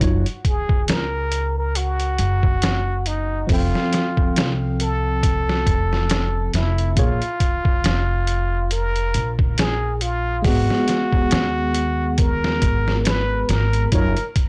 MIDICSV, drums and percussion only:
0, 0, Header, 1, 2, 480
1, 0, Start_track
1, 0, Tempo, 869565
1, 8, Time_signature, 4, 2, 24, 8
1, 7997, End_track
2, 0, Start_track
2, 0, Title_t, "Drums"
2, 6, Note_on_c, 9, 36, 106
2, 7, Note_on_c, 9, 42, 78
2, 61, Note_off_c, 9, 36, 0
2, 62, Note_off_c, 9, 42, 0
2, 144, Note_on_c, 9, 42, 43
2, 200, Note_off_c, 9, 42, 0
2, 247, Note_on_c, 9, 36, 87
2, 247, Note_on_c, 9, 42, 61
2, 302, Note_off_c, 9, 36, 0
2, 302, Note_off_c, 9, 42, 0
2, 382, Note_on_c, 9, 36, 90
2, 438, Note_off_c, 9, 36, 0
2, 486, Note_on_c, 9, 42, 82
2, 494, Note_on_c, 9, 38, 113
2, 541, Note_off_c, 9, 42, 0
2, 550, Note_off_c, 9, 38, 0
2, 727, Note_on_c, 9, 42, 64
2, 782, Note_off_c, 9, 42, 0
2, 968, Note_on_c, 9, 42, 81
2, 1023, Note_off_c, 9, 42, 0
2, 1102, Note_on_c, 9, 42, 44
2, 1157, Note_off_c, 9, 42, 0
2, 1206, Note_on_c, 9, 42, 68
2, 1261, Note_off_c, 9, 42, 0
2, 1342, Note_on_c, 9, 36, 80
2, 1397, Note_off_c, 9, 36, 0
2, 1446, Note_on_c, 9, 42, 75
2, 1455, Note_on_c, 9, 38, 106
2, 1502, Note_off_c, 9, 42, 0
2, 1510, Note_off_c, 9, 38, 0
2, 1688, Note_on_c, 9, 42, 68
2, 1743, Note_off_c, 9, 42, 0
2, 1927, Note_on_c, 9, 36, 105
2, 1927, Note_on_c, 9, 46, 76
2, 1982, Note_off_c, 9, 36, 0
2, 1982, Note_off_c, 9, 46, 0
2, 2072, Note_on_c, 9, 38, 38
2, 2127, Note_off_c, 9, 38, 0
2, 2167, Note_on_c, 9, 42, 63
2, 2175, Note_on_c, 9, 38, 46
2, 2222, Note_off_c, 9, 42, 0
2, 2230, Note_off_c, 9, 38, 0
2, 2303, Note_on_c, 9, 36, 93
2, 2358, Note_off_c, 9, 36, 0
2, 2408, Note_on_c, 9, 42, 86
2, 2417, Note_on_c, 9, 38, 119
2, 2464, Note_off_c, 9, 42, 0
2, 2472, Note_off_c, 9, 38, 0
2, 2649, Note_on_c, 9, 42, 65
2, 2704, Note_off_c, 9, 42, 0
2, 2888, Note_on_c, 9, 36, 100
2, 2889, Note_on_c, 9, 42, 83
2, 2943, Note_off_c, 9, 36, 0
2, 2944, Note_off_c, 9, 42, 0
2, 3032, Note_on_c, 9, 38, 44
2, 3088, Note_off_c, 9, 38, 0
2, 3127, Note_on_c, 9, 36, 91
2, 3128, Note_on_c, 9, 42, 62
2, 3183, Note_off_c, 9, 36, 0
2, 3184, Note_off_c, 9, 42, 0
2, 3272, Note_on_c, 9, 38, 40
2, 3327, Note_off_c, 9, 38, 0
2, 3365, Note_on_c, 9, 42, 79
2, 3373, Note_on_c, 9, 38, 104
2, 3420, Note_off_c, 9, 42, 0
2, 3428, Note_off_c, 9, 38, 0
2, 3607, Note_on_c, 9, 42, 69
2, 3615, Note_on_c, 9, 38, 57
2, 3662, Note_off_c, 9, 42, 0
2, 3671, Note_off_c, 9, 38, 0
2, 3744, Note_on_c, 9, 42, 40
2, 3799, Note_off_c, 9, 42, 0
2, 3846, Note_on_c, 9, 42, 83
2, 3847, Note_on_c, 9, 36, 106
2, 3901, Note_off_c, 9, 42, 0
2, 3902, Note_off_c, 9, 36, 0
2, 3984, Note_on_c, 9, 42, 39
2, 4039, Note_off_c, 9, 42, 0
2, 4086, Note_on_c, 9, 42, 68
2, 4087, Note_on_c, 9, 36, 88
2, 4142, Note_off_c, 9, 36, 0
2, 4142, Note_off_c, 9, 42, 0
2, 4223, Note_on_c, 9, 36, 88
2, 4278, Note_off_c, 9, 36, 0
2, 4329, Note_on_c, 9, 42, 84
2, 4337, Note_on_c, 9, 38, 110
2, 4384, Note_off_c, 9, 42, 0
2, 4392, Note_off_c, 9, 38, 0
2, 4567, Note_on_c, 9, 42, 63
2, 4622, Note_off_c, 9, 42, 0
2, 4807, Note_on_c, 9, 42, 86
2, 4862, Note_off_c, 9, 42, 0
2, 4944, Note_on_c, 9, 42, 41
2, 4999, Note_off_c, 9, 42, 0
2, 5046, Note_on_c, 9, 42, 66
2, 5102, Note_off_c, 9, 42, 0
2, 5183, Note_on_c, 9, 36, 90
2, 5238, Note_off_c, 9, 36, 0
2, 5287, Note_on_c, 9, 42, 83
2, 5295, Note_on_c, 9, 38, 102
2, 5342, Note_off_c, 9, 42, 0
2, 5351, Note_off_c, 9, 38, 0
2, 5526, Note_on_c, 9, 42, 67
2, 5581, Note_off_c, 9, 42, 0
2, 5766, Note_on_c, 9, 36, 112
2, 5766, Note_on_c, 9, 46, 80
2, 5821, Note_off_c, 9, 46, 0
2, 5822, Note_off_c, 9, 36, 0
2, 5909, Note_on_c, 9, 38, 38
2, 5964, Note_off_c, 9, 38, 0
2, 6004, Note_on_c, 9, 42, 62
2, 6013, Note_on_c, 9, 38, 47
2, 6060, Note_off_c, 9, 42, 0
2, 6068, Note_off_c, 9, 38, 0
2, 6141, Note_on_c, 9, 36, 88
2, 6197, Note_off_c, 9, 36, 0
2, 6243, Note_on_c, 9, 42, 89
2, 6251, Note_on_c, 9, 38, 108
2, 6298, Note_off_c, 9, 42, 0
2, 6306, Note_off_c, 9, 38, 0
2, 6483, Note_on_c, 9, 42, 65
2, 6538, Note_off_c, 9, 42, 0
2, 6722, Note_on_c, 9, 42, 87
2, 6725, Note_on_c, 9, 36, 97
2, 6777, Note_off_c, 9, 42, 0
2, 6780, Note_off_c, 9, 36, 0
2, 6868, Note_on_c, 9, 38, 48
2, 6923, Note_off_c, 9, 38, 0
2, 6965, Note_on_c, 9, 42, 65
2, 6966, Note_on_c, 9, 36, 89
2, 7020, Note_off_c, 9, 42, 0
2, 7021, Note_off_c, 9, 36, 0
2, 7109, Note_on_c, 9, 38, 42
2, 7164, Note_off_c, 9, 38, 0
2, 7205, Note_on_c, 9, 42, 85
2, 7214, Note_on_c, 9, 38, 101
2, 7261, Note_off_c, 9, 42, 0
2, 7269, Note_off_c, 9, 38, 0
2, 7446, Note_on_c, 9, 42, 69
2, 7454, Note_on_c, 9, 38, 55
2, 7501, Note_off_c, 9, 42, 0
2, 7509, Note_off_c, 9, 38, 0
2, 7581, Note_on_c, 9, 42, 41
2, 7636, Note_off_c, 9, 42, 0
2, 7683, Note_on_c, 9, 42, 81
2, 7685, Note_on_c, 9, 36, 108
2, 7738, Note_off_c, 9, 42, 0
2, 7741, Note_off_c, 9, 36, 0
2, 7820, Note_on_c, 9, 42, 42
2, 7875, Note_off_c, 9, 42, 0
2, 7925, Note_on_c, 9, 42, 66
2, 7926, Note_on_c, 9, 36, 94
2, 7980, Note_off_c, 9, 42, 0
2, 7981, Note_off_c, 9, 36, 0
2, 7997, End_track
0, 0, End_of_file